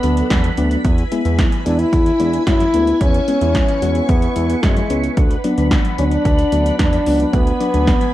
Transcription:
0.00 0.22 D2 loud
0.00 0.23 F#3 medium
0.00 0.54 B3 medium
0.00 0.23 B3 medium
0.00 0.81 D4 medium
0.00 0.23 D4 medium
0.00 0.81 A4 medium
0.00 0.81 F#5 medium
0.00 2.97 B5 medium
0.00 closed hi-hat medium
0.17 closed hi-hat medium
0.30 0.50 E2 loud
0.30 kick loud
0.30 snare loud
0.30 closed hi-hat medium
0.44 closed hi-hat medium
0.57 0.77 D2 medium
0.57 0.77 F#3 medium
0.57 0.77 B3 medium
0.57 0.77 D4 loud
0.57 closed hi-hat medium
0.71 closed hi-hat soft
0.85 1.04 E2 loud
0.85 5.13 E4 medium
0.85 8.14 B4 medium
0.85 5.13 G#5 medium
0.85 kick loud
0.85 closed hi-hat medium
0.98 closed hi-hat medium
1.12 1.21 G#3 medium
1.12 1.21 B3 medium
1.12 1.21 E4 medium
1.12 closed hi-hat medium
1.25 1.44 E2 loud
1.25 1.45 G#3 medium
1.25 1.45 B3 medium
1.25 1.45 E4 medium
1.25 closed hi-hat medium
1.39 kick loud
1.39 snare loud
1.39 closed hi-hat medium
1.52 closed hi-hat medium
1.66 1.85 E2 loud
1.66 1.85 G#3 medium
1.66 1.85 B3 medium
1.66 1.81 D4 loud
1.66 1.85 E4 medium
1.66 closed hi-hat medium
1.79 2.46 E4 loud
1.79 closed hi-hat soft
1.93 2.12 E2 loud
1.93 kick loud
1.93 closed hi-hat medium
2.06 closed hi-hat medium
2.20 2.39 E2 loud
2.20 2.39 G#3 medium
2.20 2.39 B3 medium
2.20 2.39 D4 medium
2.20 closed hi-hat medium
2.33 closed hi-hat medium
2.47 2.66 F#2 loud
2.47 3.02 E4 loud
2.47 kick loud
2.47 snare loud
2.47 closed hi-hat medium
2.60 closed hi-hat medium
2.74 2.93 D2 loud
2.74 2.93 G#3 medium
2.74 2.93 B3 medium
2.74 2.93 E4 medium
2.74 closed hi-hat medium
2.87 closed hi-hat soft
3.01 3.20 E2 loud
3.01 4.11 C#4 loud
3.01 5.15 C#6 medium
3.01 kick loud
3.01 closed hi-hat medium
3.14 closed hi-hat medium
3.28 3.38 G#3 medium
3.28 3.38 B3 medium
3.28 3.38 C#4 medium
3.28 closed hi-hat medium
3.41 3.60 E2 loud
3.41 3.61 G#3 medium
3.41 3.61 B3 medium
3.41 3.61 E4 medium
3.41 closed hi-hat medium
3.55 kick loud
3.55 snare loud
3.55 closed hi-hat medium
3.68 closed hi-hat medium
3.82 4.01 E2 medium
3.82 4.01 G#3 medium
3.82 4.01 B3 medium
3.82 4.01 F#4 medium
3.82 closed hi-hat medium
3.95 closed hi-hat soft
4.09 4.28 E2 loud
4.09 4.49 B3 loud
4.09 kick loud
4.09 closed hi-hat medium
4.22 closed hi-hat medium
4.36 4.55 E2 loud
4.36 4.55 G#3 medium
4.36 4.55 B3 medium
4.36 4.55 E4 medium
4.36 closed hi-hat medium
4.49 4.65 B3 medium
4.49 closed hi-hat medium
4.63 4.82 F#2 loud
4.63 5.04 G#3 medium
4.63 kick loud
4.63 snare loud
4.63 closed hi-hat medium
4.77 closed hi-hat medium
4.90 5.09 C#2 medium
4.90 5.10 G#3 medium
4.90 5.10 B3 medium
4.90 5.10 C#4 medium
4.90 closed hi-hat medium
5.04 closed hi-hat soft
5.17 5.36 D2 loud
5.17 8.14 D4 medium
5.17 7.31 F#5 medium
5.17 8.14 B5 medium
5.17 kick loud
5.17 closed hi-hat medium
5.31 closed hi-hat medium
5.44 5.54 F#3 medium
5.44 5.54 B3 medium
5.44 5.54 D4 loud
5.44 closed hi-hat medium
5.58 5.77 D2 loud
5.58 5.77 F#3 medium
5.58 5.77 B3 medium
5.58 5.77 D4 medium
5.58 closed hi-hat medium
5.71 kick loud
5.71 snare loud
5.71 closed hi-hat medium
5.85 closed hi-hat medium
5.98 6.17 D2 loud
5.98 6.18 F#3 medium
5.98 6.18 B3 medium
5.98 6.04 C#4 medium
5.98 6.18 D4 medium
5.98 closed hi-hat medium
6.11 6.75 D4 medium
6.11 closed hi-hat soft
6.25 6.44 D2 loud
6.25 kick loud
6.25 closed hi-hat medium
6.39 closed hi-hat medium
6.52 6.71 D2 loud
6.52 6.72 F#3 medium
6.52 6.72 B3 medium
6.52 6.72 D4 medium
6.52 closed hi-hat medium
6.66 closed hi-hat medium
6.79 6.98 E2 loud
6.79 7.35 D4 medium
6.79 kick loud
6.79 snare loud
6.79 closed hi-hat medium
6.93 closed hi-hat medium
7.06 7.25 C#2 medium
7.06 7.26 F#3 medium
7.06 7.26 B3 medium
7.06 7.26 D4 medium
7.06 open hi-hat medium
7.20 closed hi-hat soft
7.33 7.52 D2 loud
7.33 8.14 B3 loud
7.33 8.14 G#5 medium
7.33 kick loud
7.33 closed hi-hat medium
7.47 closed hi-hat medium
7.60 7.70 F#3 medium
7.60 7.70 B3 medium
7.60 7.70 D4 medium
7.60 closed hi-hat medium
7.74 7.93 D2 loud
7.74 7.93 F#3 medium
7.74 7.93 B3 medium
7.74 7.93 D4 medium
7.74 closed hi-hat medium
7.87 kick loud
7.87 snare loud
7.87 closed hi-hat medium
8.01 closed hi-hat medium

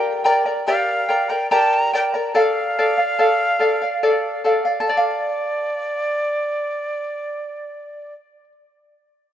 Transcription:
0.00 0.24 G4 medium
0.00 0.24 A#4 loud
0.00 0.24 D5 medium
0.00 0.23 G5 loud
0.00 0.24 A#5 medium
0.24 0.45 A#4 medium
0.24 0.45 D5 medium
0.24 0.45 G5 medium
0.24 0.44 A#5 medium
0.46 0.66 A#4 soft
0.46 0.66 D5 medium
0.46 0.66 A#5 medium
0.67 1.09 G4 medium
0.67 1.08 A#4 medium
0.67 1.09 D5 medium
0.67 1.31 F5 loud
0.67 1.07 G5 medium
0.67 1.09 A#5 medium
1.09 1.30 A#4 medium
1.09 1.30 D5 medium
1.09 1.29 G5 medium
1.09 1.29 A#5 medium
1.30 1.50 A#4 soft
1.30 1.50 D5 medium
1.30 1.50 G5 medium
1.30 1.50 A#5 medium
1.51 1.93 G4 medium
1.51 1.93 A#4 medium
1.51 1.93 D5 medium
1.51 1.92 G5 medium
1.51 1.75 A5 loud
1.51 1.93 A#5 loud
1.73 1.93 A#5 loud
1.93 2.14 A#4 medium
1.93 2.13 D5 medium
1.93 2.14 G5 medium
1.93 2.04 G5 loud
1.93 2.13 A#5 medium
2.14 2.34 A#4 soft
2.14 2.34 D5 soft
2.14 2.34 A#5 medium
2.34 2.76 A4 medium
2.34 2.76 D5 medium
2.34 2.77 F5 loud
2.34 4.42 F5 loud
2.79 2.98 A4 medium
2.79 2.98 D5 medium
2.79 2.96 F5 medium
2.98 3.18 D5 medium
2.98 3.18 F5 medium
3.19 3.58 A4 medium
3.19 3.59 D5 medium
3.19 3.60 F5 medium
3.59 3.81 A4 medium
3.59 3.81 D5 medium
3.59 3.80 F5 medium
3.82 4.02 D5 medium
3.82 4.02 F5 medium
4.03 4.43 A4 medium
4.03 4.44 D5 medium
4.03 4.45 F5 medium
4.44 4.65 A4 medium
4.44 4.65 D5 medium
4.44 4.64 F5 medium
4.65 4.87 D5 soft
4.65 4.86 F5 medium
4.80 8.34 A4 medium
4.86 8.15 D5 medium
4.86 8.44 D5 medium
4.97 8.52 F5 medium

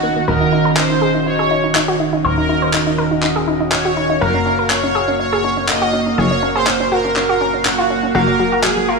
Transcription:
0.00 0.26 D#1 medium
0.00 0.25 D#3 medium
0.00 0.10 A#3 medium
0.00 0.25 C#4 medium
0.00 0.24 F#4 medium
0.00 0.25 F#4 medium
0.00 0.25 D#5 medium
0.16 0.22 A#3 medium
0.28 2.22 D#1 medium
0.28 4.18 D#3 medium
0.28 4.18 C#4 medium
0.28 4.19 F#4 medium
0.28 0.34 A#4 loud
0.28 0.79 A#4 loud
0.28 4.19 D#5 medium
0.41 0.47 D#4 medium
0.52 0.59 D#4 medium
0.65 0.71 A#4 medium
0.77 0.84 D#4 medium
0.77 1.28 C5 loud
0.77 clap loud
0.90 0.96 D#4 medium
1.02 1.08 G#4 medium
1.14 1.20 D#4 medium
1.26 1.33 D#4 medium
1.26 1.96 C#5 loud
1.39 1.45 G#4 medium
1.51 1.57 D#4 medium
1.64 1.70 D#4 medium
1.75 1.82 D#4 medium
1.75 clap loud
1.88 1.94 F#4 medium
2.00 2.06 D#4 medium
2.13 2.19 D#4 medium
2.25 4.19 D#1 medium
2.25 2.94 A#4 loud
2.25 2.31 C5 loud
2.37 2.43 D#4 medium
2.49 2.56 D#4 medium
2.62 2.68 C5 medium
2.73 2.80 D#4 medium
2.73 clap loud
2.87 2.93 D#4 medium
2.98 3.05 A#4 medium
3.11 3.17 D#4 medium
3.23 3.29 D#4 medium
3.23 clap medium
3.36 3.42 G#4 medium
3.48 3.54 D#4 medium
3.60 3.66 D#4 medium
3.72 3.79 D#4 medium
3.72 4.23 C#5 loud
3.72 clap loud
3.85 3.91 F#4 medium
3.97 4.03 D#4 medium
4.10 4.16 D#4 medium
4.21 6.16 F#1 medium
4.21 8.12 A#3 medium
4.21 8.12 F#4 medium
4.21 4.28 A#4 loud
4.21 4.67 A#4 loud
4.21 8.12 F5 medium
4.34 4.40 C#4 medium
4.46 4.52 C#4 medium
4.59 4.65 A#4 medium
4.70 4.77 C#4 medium
4.70 5.19 C#5 loud
4.70 clap loud
4.83 4.89 C#4 medium
4.95 5.02 G#4 medium
5.08 5.14 C#4 medium
5.20 5.26 C#4 medium
5.20 5.65 C#5 loud
5.33 5.38 G#4 medium
5.44 5.51 C#4 medium
5.57 5.63 C#4 medium
5.68 5.75 C#4 medium
5.68 6.20 D#5 loud
5.68 clap loud
5.82 5.88 F#4 medium
5.93 6.00 C#4 medium
6.06 6.12 C#4 medium
6.18 8.12 F#1 medium
6.18 6.25 G#4 loud
6.18 6.57 C#5 loud
6.31 6.37 C#4 medium
6.43 6.49 C#4 medium
6.55 6.61 G#4 medium
6.55 6.93 C5 loud
6.67 6.74 C#4 medium
6.67 clap loud
6.80 6.86 C#4 medium
6.92 6.98 F#4 medium
6.92 7.15 A#4 loud
7.05 7.11 C#4 medium
7.16 7.23 C#4 medium
7.16 7.67 A#4 loud
7.16 clap medium
7.29 7.35 F#4 medium
7.41 7.47 C#4 medium
7.54 7.60 C#4 medium
7.65 7.72 C#4 medium
7.65 8.16 F#4 medium
7.65 clap loud
7.78 7.84 F4 medium
7.90 7.97 C#4 medium
8.03 8.09 C#4 medium
8.15 8.99 F#1 medium
8.15 8.99 A#3 medium
8.15 8.21 F#4 loud
8.15 8.99 F#4 medium
8.15 8.61 A#4 loud
8.15 8.99 F5 medium
8.28 8.34 F#3 medium
8.39 8.46 F#3 medium
8.52 8.58 F#4 medium
8.64 8.70 F#3 medium
8.64 8.87 G#4 medium
8.64 clap loud
8.77 8.83 F#3 medium
8.88 8.95 F4 medium
8.88 8.99 A#4 loud

